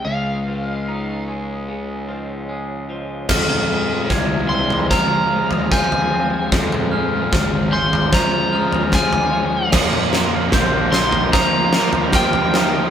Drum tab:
CC |----------------|x---------------|----------------|x---------------|
SD |----------------|o---o---o---o---|o---o---o---o---|o-o-o-o-o-o-o-o-|
T2 |----------------|-o--------------|-o--------------|-o--------------|
FT |----------------|o---o--o---o-o--|o---o--o---o-o--|o---o--o---o-o--|
BD |----------------|o---o---o---o---|o---o---o---o---|o---o---o---o---|